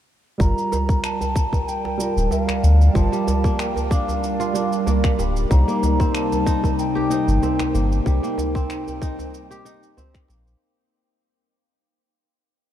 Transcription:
0.38 0.54 G1 loud
0.38 1.95 G3 medium
0.38 10.58 G3 medium
0.38 1.96 F4 medium
0.38 5.47 A#4 medium
0.38 10.58 D5 medium
0.38 5.47 G5 medium
0.38 1.00 A#5 loud
0.38 kick loud
0.38 shaker soft
0.42 1.97 A#4 medium
0.58 shaker soft
0.72 djembe tone medium
0.72 djembe bass medium
0.72 shaker medium
0.89 kick loud
0.89 shaker soft
1.04 1.69 A5 loud
1.04 finger snap medium
1.04 shaker soft
1.21 djembe tone medium
1.21 shaker soft
1.36 kick medium
1.36 shaker medium
1.53 kick medium
1.53 djembe tone medium
1.53 shaker soft
1.68 2.33 G5 medium
1.68 shaker soft
1.85 djembe slap soft
1.98 2.91 G3 medium
1.98 2.92 F4 medium
1.98 2.93 A#4 medium
1.98 shaker medium
2.16 2.28 D1 medium
2.16 shaker soft
2.31 2.44 E5 medium
2.31 djembe tone medium
2.31 shaker soft
2.44 2.95 F5 medium
2.48 finger snap medium
2.48 djembe tone medium
2.48 shaker soft
2.63 2.89 D2 medium
2.63 shaker medium
2.81 shaker soft
2.93 3.09 G1 loud
2.93 5.29 F3 medium
2.93 4.50 G3 medium
2.93 4.51 F4 medium
2.93 4.52 A#4 medium
2.93 3.61 A5 medium
2.93 kick loud
2.93 shaker soft
3.12 5.17 G3 medium
3.12 shaker soft
3.27 djembe tone medium
3.27 djembe bass medium
3.27 shaker medium
3.44 4.86 A#3 medium
3.44 kick loud
3.44 shaker soft
3.59 3.93 G5 medium
3.59 finger snap medium
3.59 shaker soft
3.76 djembe tone medium
3.76 shaker soft
3.91 4.54 D4 medium
3.91 5.19 F5 medium
3.91 kick loud
3.91 shaker medium
4.08 djembe slap soft
4.08 djembe tone medium
4.08 shaker soft
4.24 shaker soft
4.40 5.91 F4 loud
4.40 shaker soft
4.53 5.46 G3 medium
4.53 6.23 D4 medium
4.53 5.47 F4 medium
4.53 5.48 A#4 medium
4.53 shaker medium
4.73 shaker soft
4.87 5.67 A#3 medium
4.87 djembe bass medium
4.87 shaker soft
5.04 finger snap medium
5.04 kick loud
5.04 shaker soft
5.19 5.45 D1 loud
5.19 5.50 G3 medium
5.19 djembe slap medium
5.19 shaker medium
5.37 shaker soft
5.49 5.64 C2 medium
5.49 10.57 C3 medium
5.49 7.85 G3 medium
5.49 7.06 A#3 medium
5.49 7.07 D#4 medium
5.49 10.58 D#4 medium
5.49 6.08 A#5 loud
5.49 kick loud
5.49 shaker soft
5.53 7.08 C5 medium
5.68 7.61 A#3 medium
5.68 shaker soft
5.83 djembe tone medium
5.83 djembe bass medium
5.83 shaker medium
6.00 7.42 C4 loud
6.00 kick loud
6.00 shaker soft
6.08 6.16 A#5 medium
6.15 6.78 A5 loud
6.15 finger snap medium
6.15 shaker soft
6.32 djembe tone medium
6.32 shaker soft
6.46 7.10 D#4 loud
6.46 kick medium
6.46 shaker medium
6.64 kick medium
6.64 djembe tone medium
6.64 shaker soft
6.79 8.02 G5 loud
6.79 shaker soft
6.95 8.36 G4 loud
6.95 djembe slap soft
7.09 8.02 A#3 medium
7.09 8.72 D#4 loud
7.09 8.03 D#4 medium
7.09 8.04 C5 medium
7.09 shaker medium
7.28 7.39 G1 medium
7.28 shaker soft
7.42 8.55 C4 medium
7.42 djembe tone medium
7.42 shaker soft
7.59 finger snap medium
7.59 djembe tone medium
7.59 shaker soft
7.74 8.00 G1 medium
7.74 8.23 A#3 medium
7.74 shaker medium
7.92 shaker soft
8.04 8.20 C2 medium
8.04 10.40 G3 medium
8.04 9.61 A#3 medium
8.04 9.62 D#4 medium
8.04 9.94 G5 medium
8.04 kick loud
8.04 shaker soft
8.08 9.63 C5 medium
8.23 10.16 A#3 loud
8.23 shaker soft
8.38 djembe tone medium
8.38 djembe bass loud
8.38 shaker medium
8.55 9.97 C4 loud
8.55 kick loud
8.55 shaker soft
8.70 finger snap medium
8.70 shaker soft
8.88 djembe tone medium
8.88 shaker soft
9.02 9.65 D#4 loud
9.02 kick loud
9.02 shaker medium
9.19 djembe slap soft
9.19 djembe tone medium
9.19 shaker soft
9.34 shaker soft
9.51 10.92 G4 loud
9.51 shaker soft
9.65 11.27 D#4 loud
9.65 shaker medium
9.83 shaker soft
9.97 11.77 C4 medium
9.97 djembe bass medium
9.97 shaker soft
10.14 finger snap medium
10.14 kick loud
10.14 shaker soft
10.28 10.55 A#1 medium
10.28 12.22 A#3 medium
10.28 djembe slap medium
10.28 shaker medium
10.47 shaker soft

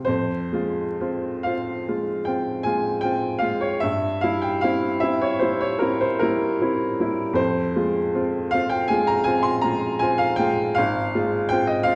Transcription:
0.05 3.80 F2 medium
0.05 1.45 C5 medium
0.52 0.96 G#3 soft
0.52 0.96 F4 medium
1.01 1.42 C4 soft
1.01 1.42 F4 soft
1.43 1.84 C4 soft
1.43 1.84 F4 soft
1.43 2.26 F5 medium
1.88 2.23 G#3 soft
1.88 2.24 F4 soft
2.25 2.62 C4 soft
2.25 2.62 F4 soft
2.25 2.65 G5 medium
2.63 3.00 G#3 soft
2.63 3.01 F4 soft
2.63 3.03 G#5 medium
3.01 3.39 C4 soft
3.01 3.39 F4 soft
3.01 3.41 G5 medium
3.39 3.78 G#3 soft
3.39 3.79 F4 medium
3.39 3.61 F5 medium
3.61 3.82 C#5 medium
3.80 7.34 G2 medium
3.80 4.22 E5 medium
4.21 4.60 G3 soft
4.21 4.60 E4 soft
4.21 4.43 F5 medium
4.42 4.63 G5 medium
4.61 4.99 C4 soft
4.61 5.00 E4 medium
4.61 5.02 F5 medium
5.00 5.38 C4 soft
5.00 5.38 E4 soft
5.00 5.21 E5 medium
5.21 5.42 C#5 medium
5.39 5.77 G3 soft
5.39 5.78 E4 soft
5.39 5.61 C5 medium
5.60 5.81 C#5 medium
5.79 6.17 C4 soft
5.79 6.17 E4 soft
5.79 6.00 A#4 medium
6.01 6.21 C5 medium
6.19 6.57 G3 soft
6.19 6.57 E4 soft
6.19 7.37 A#4 medium
6.61 6.96 C4 soft
6.61 6.96 E4 soft
7.00 7.34 G3 medium
7.00 7.35 E4 soft
7.33 10.71 F2 medium
7.33 8.52 C5 medium
7.76 8.11 G#3 soft
7.76 8.11 F4 soft
8.15 8.49 C4 soft
8.15 8.49 F4 medium
8.51 8.87 C4 soft
8.51 8.88 F4 medium
8.51 8.71 F5 medium
8.69 8.89 G5 medium
8.88 9.24 G#3 soft
8.88 9.24 F4 medium
8.88 9.08 G#5 medium
9.07 9.27 A#5 medium
9.24 9.60 C4 soft
9.24 9.61 F4 soft
9.24 9.44 G#5 medium
9.43 9.63 C6 medium
9.61 9.98 G#3 soft
9.61 9.98 F4 medium
9.61 10.00 A#5 medium
9.99 10.36 C4 medium
9.99 10.36 F4 medium
9.99 10.20 G#5 medium
10.18 10.38 F5 medium
10.36 10.73 G#3 medium
10.36 10.73 F4 medium
10.36 10.75 G5 medium
10.75 11.95 G#1 medium
10.75 11.51 F5 medium
11.15 11.48 G#3 medium
11.15 11.48 F4 medium
11.49 11.85 C4 medium
11.49 11.85 F4 medium
11.49 11.69 G5 loud
11.67 11.87 D#5 medium
11.83 11.95 C4 soft
11.83 11.95 F4 medium
11.83 11.95 F5 medium

